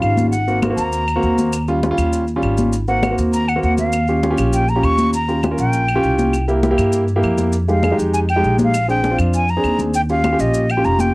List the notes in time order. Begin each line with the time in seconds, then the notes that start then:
Already playing: G3 C#4 F4
0.01 G#1 F5, high conga, claves, maracas
0.17 high conga, maracas
0.31 F#5, high conga, maracas
0.48 A#3 C4 F#4, high conga, maracas
0.62 A#3 C4 F#4, high conga, claves, maracas
0.70 A#3 C4 F#4
0.76 D#2 A#5, high conga, maracas
0.92 high conga, maracas
1.08 high conga, claves, maracas
1.16 A#3 C4 F#4
1.23 D#2, high conga, maracas
1.38 high conga, maracas
1.53 high conga, claves, maracas
1.68 G3 C#4 F4, high conga, maracas
1.83 G3 C#4 F4, high conga, maracas
1.91 G3 C#4 F4
1.98 D#2, high conga, claves, maracas
2.13 high conga, maracas
2.28 high conga, maracas
2.36 G3 C#4 F4
2.42 G#1, high conga, claves, maracas
2.57 high conga, maracas
2.73 maracas
2.88 A#3 C4 F#4 F#5, high conga, maracas
3.03 A#3 C4 F#4, high conga, claves, maracas
3.11 A#3 C4 F#4
3.18 D#2, high conga, maracas
3.33 A#5, high conga, maracas
3.48 F#5, high conga, claves, maracas
3.56 A#3 C4 F#4
3.63 D#2 F#5, high conga, maracas
3.78 F5, high conga, maracas
3.92 high conga, claves, maracas
4.08 C#4 F4 G4, high conga, maracas
4.23 C#4 F4 G4, high conga, maracas
4.31 C#4 F4 G4
4.38 A#1, high conga, claves, maracas
4.53 G5, high conga, maracas
4.68 A#5, high conga, maracas
4.76 C#4 F4 G4
4.83 D#2 C#6, high conga, claves, maracas
4.98 high conga, maracas
5.13 A#5, high conga, maracas
5.28 C#4 F4 G4, high conga, maracas
5.43 C#4 F4 G4, high conga, claves, maracas
5.51 C#4 F4 A#4
5.58 A#1 G5, high conga, maracas
5.73 high conga, maracas
5.88 high conga, claves, maracas
5.95 C#4 F4 G4
6.03 C2, high conga, maracas
6.19 high conga, maracas
6.33 claves, maracas
6.48 A#3 E4 G4, high conga, maracas
6.63 A#3 E4 G4, high conga, maracas
6.71 A#3 E4 G4
6.78 G2, high conga, claves, maracas
6.92 high conga, maracas
7.08 high conga, maracas
7.16 A#3 E4 G4
7.23 F2, high conga, claves, maracas
7.38 high conga, maracas
7.53 high conga, maracas
7.68 G#3 D#4 G4 F5, high conga, maracas
7.83 G#3 D#4 G#4, high conga, claves, maracas
7.92 G#3 D#4 G4
7.98 F2, high conga, maracas
8.13 G#5, high conga, maracas
8.28 G5, high conga, claves, maracas
8.36 G#3 D#4 G4
8.43 A#1, high conga, maracas
8.59 high conga, maracas
8.64 F5
8.74 claves, maracas
8.88 C4 D4 G#4 G5, high conga, maracas
9.03 C4 D4 G#4, high conga, maracas
9.11 C4 D4 F4
9.19 F2, high conga, claves, maracas
9.34 G#5, high conga, maracas
9.48 A#5, high conga, maracas
9.57 C4 D4 G#4
9.63 D#2, high conga, claves, maracas
9.79 high conga, maracas
9.94 G5, maracas
10.09 C#4 F4 G4 F5, high conga, maracas
10.24 C#4 F4 G4, high conga, claves, maracas
10.33 C#4 F4 G4
10.39 A#1 D#5, high conga, maracas
10.54 high conga, maracas
10.69 G5, high conga, claves, maracas
10.77 C#4 F4 G4
10.84 F1 A#5, high conga, maracas
10.99 G5, high conga, maracas